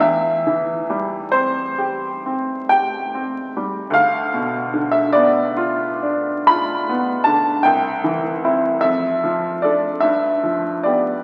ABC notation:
X:1
M:9/8
L:1/16
Q:3/8=49
K:C
V:1 name="Grand piano"
e6 c6 g6 | f4- f e d6 b4 a2 | g6 e4 d2 e4 d2 |]
V:2 name="Grand piano"
E,,2 E,2 G,2 C2 G2 C2 G2 C2 G,2 | D,,2 B,,2 D,2 B,2 F2 D2 F2 B,2 D,2 | C,,2 E,2 [CE]2 F,,2 F,2 [DA]2 G,,2 F,2 [B,G]2 |]